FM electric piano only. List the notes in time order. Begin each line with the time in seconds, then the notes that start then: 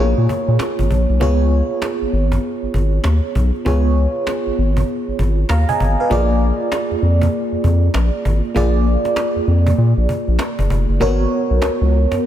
Already playing: A#3
0.00 F4 G#4 C#5
1.20 B3 F4 G#4 C#5
3.65 B3 F4 G#4 C#5
5.50 F5 A#5
5.69 D#5 G#5
6.00 B4 F5
6.10 A#3 F4 G#4 D5
8.55 A#3 F4 G#4 D5
11.00 A#3 F#4 A#4 C#5